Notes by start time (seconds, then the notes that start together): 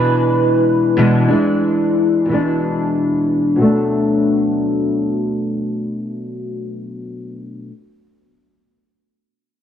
Already playing: B2 E3 G#3 D4 B4
0.97 B2 E3 G#3 D4
1.28 G#3 D4
1.32 E3
2.26 B2 E3
2.32 G#3 D4
3.56 B2 F#3
3.61 A3 D4